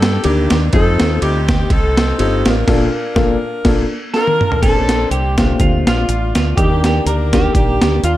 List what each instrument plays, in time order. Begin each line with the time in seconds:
Already playing: fingered electric bass G2, saxophone section D4 G4 A4
0.02 snare, ride bell
0.23 fingered electric bass D2, upright piano D#3 A#3 D4 G4, saxophone section A#3 D4 G4, ride bell
0.50 fingered electric bass D#2, snare, ride bell
0.73 fingered electric bass F2, upright piano C4 D#4 F4 A4, saxophone section C4 D#4 A4, kick, ride bell
1.00 fingered electric bass D#2, snare, ride bell
1.22 fingered electric bass D2, saxophone section C4 D#4 G4, ride bell
1.48 kick, snare, ride bell
1.70 fingered electric bass C2, saxophone section C4 D#4 A4, kick, ride bell
1.97 snare, ride bell
2.18 fingered electric bass G1, upright piano C4 D#4 F4 G4, saxophone section A4, ride bell
2.45 fingered electric bass A1, saxophone section D4 F4 A#4, snare, ride bell
2.67 fingered electric bass A#1, upright piano A#2 A#3 D4 F4 A4, kick, snare, crash
3.16 fingered electric bass A#1, upright piano A#2 A#3 D4 F4 A4, kick, snare
3.65 fingered electric bass A#1, upright piano A#3 D4 F4 A4, kick, snare, crash
4.14 saxophone section D4 F4 A#4, clean electric guitar A#4, snare
4.27 high tom
4.41 mid tom
4.51 clean electric guitar A4, floor tom
4.62 fingered electric bass A#1, upright piano A#2 A#3 C4 D4 A4, saxophone section C4 D4 A4, clean electric guitar A4, kick, closed hi-hat, crash
4.76 upright piano A#3 C4 C#4 A4
4.83 upright piano D4
4.89 snare, closed hi-hat
5.11 fingered electric bass C2, saxophone section G4, clean electric guitar G4, closed hi-hat
5.38 upright piano A#2 C4 D4 G4, saxophone section A3 D4 F4, kick, snare, closed hi-hat
5.60 fingered electric bass D2, clean electric guitar F4, kick, closed hi-hat
5.86 fingered electric bass A#1, saxophone section A3 D4 F4, clean electric guitar F4, snare, closed hi-hat
6.08 fingered electric bass A1, closed hi-hat
6.35 fingered electric bass D2, saxophone section F4, clean electric guitar F4, snare, closed hi-hat
6.56 fingered electric bass D#2, upright piano D#3 A#3 D4 D#4 G4, saxophone section A#3 D4 G4, clean electric guitar G4, kick, closed hi-hat
6.70 upright piano A#3 D4 G4
6.83 saxophone section G4, clean electric guitar G4, snare, closed hi-hat
7.05 fingered electric bass D2, saxophone section D4 G4 A#4, clean electric guitar A#4, closed hi-hat
7.33 upright piano D#3 A#3 D4 G4, clean electric guitar G4, kick, snare, closed hi-hat
7.54 fingered electric bass A#1, saxophone section A#3 D4 G4, kick, closed hi-hat
7.82 fingered electric bass D2, snare, closed hi-hat
8.03 fingered electric bass D#2, saxophone section A#3 D4 F4, clean electric guitar F4, closed hi-hat